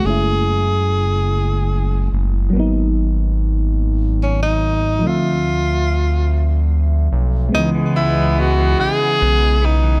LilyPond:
<<
  \new Staff \with { instrumentName = "Tenor saxophone" } { \time 6/8 \key cis \minor \tempo 4. = 48 gis'2~ gis'8 r8 | r2 cis'16 dis'8. | f'2 r4 | dis'8 e'8 fis'8 gis'4 dis'8 | }
  \new Staff \with { instrumentName = "FM electric piano" } { \time 6/8 \key cis \minor <gis a cis' e'>2. | <fis ais b dis'>2. | <f a c' e''>2. | <e gis b dis''>2. | }
  \new Staff \with { instrumentName = "Horn section" } { \clef bass \time 6/8 \key cis \minor r2. | r2. | r2. | <e gis b>2~ <e gis b>8 r8 | }
  \new Staff \with { instrumentName = "Clean electric guitar" } { \clef bass \time 6/8 \key cis \minor r2. | r2. | r2. | cis16 e16 b16 e16 b16 e16 cis16 e16 b16 e16 b16 e16 | }
  \new Staff \with { instrumentName = "Analog synth bass" } { \clef bass \time 6/8 \key cis \minor fis,,2~ fis,,8 fis,,8 | gis,,2. | d,2~ d,8 b,,8 | cis,4. b,,8 b,,4 | }
>>